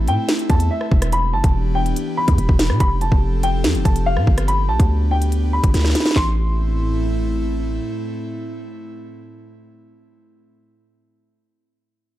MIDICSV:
0, 0, Header, 1, 5, 480
1, 0, Start_track
1, 0, Key_signature, 0, "minor"
1, 0, Tempo, 419580
1, 1287, Time_signature, 4, 2, 24, 8
1, 13937, End_track
2, 0, Start_track
2, 0, Title_t, "Grand piano"
2, 0, Program_c, 0, 0
2, 96, Note_on_c, 0, 79, 91
2, 307, Note_off_c, 0, 79, 0
2, 569, Note_on_c, 0, 81, 83
2, 784, Note_off_c, 0, 81, 0
2, 809, Note_on_c, 0, 76, 78
2, 1259, Note_off_c, 0, 76, 0
2, 1290, Note_on_c, 0, 83, 103
2, 1504, Note_off_c, 0, 83, 0
2, 1527, Note_on_c, 0, 81, 87
2, 1978, Note_off_c, 0, 81, 0
2, 2002, Note_on_c, 0, 79, 83
2, 2456, Note_off_c, 0, 79, 0
2, 2486, Note_on_c, 0, 83, 97
2, 3164, Note_off_c, 0, 83, 0
2, 3207, Note_on_c, 0, 83, 100
2, 3422, Note_off_c, 0, 83, 0
2, 3448, Note_on_c, 0, 81, 81
2, 3899, Note_off_c, 0, 81, 0
2, 3929, Note_on_c, 0, 79, 92
2, 4143, Note_off_c, 0, 79, 0
2, 4404, Note_on_c, 0, 81, 75
2, 4621, Note_off_c, 0, 81, 0
2, 4649, Note_on_c, 0, 77, 96
2, 5099, Note_off_c, 0, 77, 0
2, 5124, Note_on_c, 0, 83, 111
2, 5341, Note_off_c, 0, 83, 0
2, 5362, Note_on_c, 0, 81, 91
2, 5816, Note_off_c, 0, 81, 0
2, 5849, Note_on_c, 0, 79, 85
2, 6299, Note_off_c, 0, 79, 0
2, 6328, Note_on_c, 0, 83, 85
2, 7004, Note_off_c, 0, 83, 0
2, 7048, Note_on_c, 0, 84, 90
2, 8442, Note_off_c, 0, 84, 0
2, 13937, End_track
3, 0, Start_track
3, 0, Title_t, "Analog synth pad"
3, 0, Program_c, 1, 89
3, 0, Note_on_c, 1, 57, 87
3, 0, Note_on_c, 1, 60, 79
3, 0, Note_on_c, 1, 64, 94
3, 1269, Note_off_c, 1, 57, 0
3, 1269, Note_off_c, 1, 60, 0
3, 1269, Note_off_c, 1, 64, 0
3, 1286, Note_on_c, 1, 52, 87
3, 1287, Note_on_c, 1, 62, 77
3, 1287, Note_on_c, 1, 67, 94
3, 1288, Note_on_c, 1, 59, 79
3, 3188, Note_off_c, 1, 52, 0
3, 3188, Note_off_c, 1, 59, 0
3, 3188, Note_off_c, 1, 62, 0
3, 3208, Note_on_c, 1, 53, 85
3, 3208, Note_on_c, 1, 60, 76
3, 3208, Note_on_c, 1, 69, 94
3, 5108, Note_off_c, 1, 53, 0
3, 5108, Note_off_c, 1, 60, 0
3, 5108, Note_off_c, 1, 69, 0
3, 5129, Note_on_c, 1, 59, 81
3, 5129, Note_on_c, 1, 62, 78
3, 7001, Note_off_c, 1, 67, 0
3, 7029, Note_off_c, 1, 59, 0
3, 7029, Note_off_c, 1, 62, 0
3, 7048, Note_on_c, 1, 64, 94
3, 7049, Note_on_c, 1, 45, 86
3, 7049, Note_on_c, 1, 57, 76
3, 7049, Note_on_c, 1, 60, 78
3, 11681, Note_off_c, 1, 64, 0
3, 11682, Note_off_c, 1, 45, 0
3, 11682, Note_off_c, 1, 57, 0
3, 11682, Note_off_c, 1, 60, 0
3, 13937, End_track
4, 0, Start_track
4, 0, Title_t, "808-style bass"
4, 0, Program_c, 2, 38
4, 88, Note_on_c, 2, 45, 101
4, 202, Note_off_c, 2, 45, 0
4, 567, Note_on_c, 2, 40, 105
4, 798, Note_off_c, 2, 40, 0
4, 1047, Note_on_c, 2, 28, 106
4, 1527, Note_on_c, 2, 31, 97
4, 1544, Note_off_c, 2, 28, 0
4, 1641, Note_off_c, 2, 31, 0
4, 1646, Note_on_c, 2, 28, 105
4, 2222, Note_off_c, 2, 28, 0
4, 2608, Note_on_c, 2, 40, 102
4, 2718, Note_off_c, 2, 40, 0
4, 2725, Note_on_c, 2, 28, 107
4, 2841, Note_off_c, 2, 28, 0
4, 2847, Note_on_c, 2, 28, 112
4, 3086, Note_on_c, 2, 47, 100
4, 3103, Note_off_c, 2, 28, 0
4, 3200, Note_off_c, 2, 47, 0
4, 3207, Note_on_c, 2, 29, 108
4, 3552, Note_off_c, 2, 29, 0
4, 3566, Note_on_c, 2, 29, 108
4, 4168, Note_on_c, 2, 41, 101
4, 4185, Note_off_c, 2, 29, 0
4, 4287, Note_on_c, 2, 29, 100
4, 4304, Note_off_c, 2, 41, 0
4, 4401, Note_off_c, 2, 29, 0
4, 4408, Note_on_c, 2, 29, 107
4, 4767, Note_on_c, 2, 45, 102
4, 4785, Note_off_c, 2, 29, 0
4, 4881, Note_off_c, 2, 45, 0
4, 4887, Note_on_c, 2, 31, 109
4, 5368, Note_on_c, 2, 35, 99
4, 5385, Note_off_c, 2, 31, 0
4, 5479, Note_off_c, 2, 35, 0
4, 5486, Note_on_c, 2, 38, 101
4, 6408, Note_off_c, 2, 38, 0
4, 6448, Note_on_c, 2, 31, 105
4, 6563, Note_off_c, 2, 31, 0
4, 6568, Note_on_c, 2, 38, 105
4, 6798, Note_off_c, 2, 38, 0
4, 7047, Note_on_c, 2, 33, 107
4, 8921, Note_off_c, 2, 33, 0
4, 13937, End_track
5, 0, Start_track
5, 0, Title_t, "Drums"
5, 87, Note_on_c, 9, 42, 81
5, 201, Note_off_c, 9, 42, 0
5, 327, Note_on_c, 9, 38, 119
5, 327, Note_on_c, 9, 42, 86
5, 441, Note_off_c, 9, 38, 0
5, 441, Note_off_c, 9, 42, 0
5, 447, Note_on_c, 9, 42, 52
5, 561, Note_off_c, 9, 42, 0
5, 567, Note_on_c, 9, 36, 104
5, 567, Note_on_c, 9, 42, 83
5, 681, Note_off_c, 9, 36, 0
5, 681, Note_off_c, 9, 42, 0
5, 686, Note_on_c, 9, 42, 88
5, 801, Note_off_c, 9, 42, 0
5, 925, Note_on_c, 9, 37, 71
5, 1040, Note_off_c, 9, 37, 0
5, 1047, Note_on_c, 9, 36, 97
5, 1161, Note_off_c, 9, 36, 0
5, 1166, Note_on_c, 9, 42, 91
5, 1167, Note_on_c, 9, 37, 98
5, 1280, Note_off_c, 9, 42, 0
5, 1281, Note_off_c, 9, 37, 0
5, 1286, Note_on_c, 9, 42, 78
5, 1401, Note_off_c, 9, 42, 0
5, 1646, Note_on_c, 9, 36, 106
5, 1646, Note_on_c, 9, 42, 86
5, 1760, Note_off_c, 9, 36, 0
5, 1761, Note_off_c, 9, 42, 0
5, 2127, Note_on_c, 9, 42, 73
5, 2241, Note_off_c, 9, 42, 0
5, 2247, Note_on_c, 9, 42, 82
5, 2361, Note_off_c, 9, 42, 0
5, 2607, Note_on_c, 9, 36, 100
5, 2607, Note_on_c, 9, 42, 86
5, 2721, Note_off_c, 9, 42, 0
5, 2722, Note_off_c, 9, 36, 0
5, 2726, Note_on_c, 9, 42, 77
5, 2841, Note_off_c, 9, 42, 0
5, 2847, Note_on_c, 9, 36, 89
5, 2961, Note_off_c, 9, 36, 0
5, 2966, Note_on_c, 9, 38, 124
5, 2967, Note_on_c, 9, 42, 83
5, 3080, Note_off_c, 9, 38, 0
5, 3081, Note_off_c, 9, 42, 0
5, 3087, Note_on_c, 9, 37, 95
5, 3201, Note_off_c, 9, 37, 0
5, 3206, Note_on_c, 9, 42, 76
5, 3207, Note_on_c, 9, 36, 117
5, 3320, Note_off_c, 9, 42, 0
5, 3321, Note_off_c, 9, 36, 0
5, 3447, Note_on_c, 9, 42, 78
5, 3561, Note_off_c, 9, 42, 0
5, 3566, Note_on_c, 9, 36, 106
5, 3680, Note_off_c, 9, 36, 0
5, 3927, Note_on_c, 9, 42, 81
5, 4041, Note_off_c, 9, 42, 0
5, 4167, Note_on_c, 9, 38, 117
5, 4167, Note_on_c, 9, 42, 85
5, 4281, Note_off_c, 9, 38, 0
5, 4281, Note_off_c, 9, 42, 0
5, 4288, Note_on_c, 9, 42, 49
5, 4402, Note_off_c, 9, 42, 0
5, 4407, Note_on_c, 9, 36, 105
5, 4408, Note_on_c, 9, 42, 78
5, 4522, Note_off_c, 9, 36, 0
5, 4522, Note_off_c, 9, 42, 0
5, 4528, Note_on_c, 9, 42, 86
5, 4642, Note_off_c, 9, 42, 0
5, 4766, Note_on_c, 9, 37, 71
5, 4881, Note_off_c, 9, 37, 0
5, 4888, Note_on_c, 9, 36, 97
5, 5002, Note_off_c, 9, 36, 0
5, 5007, Note_on_c, 9, 42, 90
5, 5008, Note_on_c, 9, 37, 95
5, 5121, Note_off_c, 9, 42, 0
5, 5122, Note_off_c, 9, 37, 0
5, 5127, Note_on_c, 9, 42, 77
5, 5241, Note_off_c, 9, 42, 0
5, 5486, Note_on_c, 9, 36, 101
5, 5487, Note_on_c, 9, 42, 86
5, 5601, Note_off_c, 9, 36, 0
5, 5602, Note_off_c, 9, 42, 0
5, 5968, Note_on_c, 9, 42, 73
5, 6082, Note_off_c, 9, 42, 0
5, 6087, Note_on_c, 9, 42, 83
5, 6202, Note_off_c, 9, 42, 0
5, 6447, Note_on_c, 9, 42, 81
5, 6448, Note_on_c, 9, 36, 99
5, 6562, Note_off_c, 9, 36, 0
5, 6562, Note_off_c, 9, 42, 0
5, 6567, Note_on_c, 9, 38, 64
5, 6567, Note_on_c, 9, 42, 76
5, 6628, Note_off_c, 9, 38, 0
5, 6628, Note_on_c, 9, 38, 62
5, 6682, Note_off_c, 9, 42, 0
5, 6687, Note_off_c, 9, 38, 0
5, 6687, Note_on_c, 9, 38, 81
5, 6747, Note_off_c, 9, 38, 0
5, 6747, Note_on_c, 9, 38, 74
5, 6807, Note_off_c, 9, 38, 0
5, 6807, Note_on_c, 9, 38, 97
5, 6807, Note_on_c, 9, 42, 83
5, 6868, Note_off_c, 9, 38, 0
5, 6868, Note_on_c, 9, 38, 86
5, 6922, Note_off_c, 9, 42, 0
5, 6928, Note_off_c, 9, 38, 0
5, 6928, Note_on_c, 9, 38, 114
5, 6988, Note_off_c, 9, 38, 0
5, 6988, Note_on_c, 9, 38, 99
5, 7048, Note_off_c, 9, 38, 0
5, 7048, Note_on_c, 9, 36, 105
5, 7048, Note_on_c, 9, 38, 105
5, 7048, Note_on_c, 9, 39, 87
5, 7162, Note_off_c, 9, 36, 0
5, 7162, Note_off_c, 9, 38, 0
5, 7162, Note_off_c, 9, 39, 0
5, 13937, End_track
0, 0, End_of_file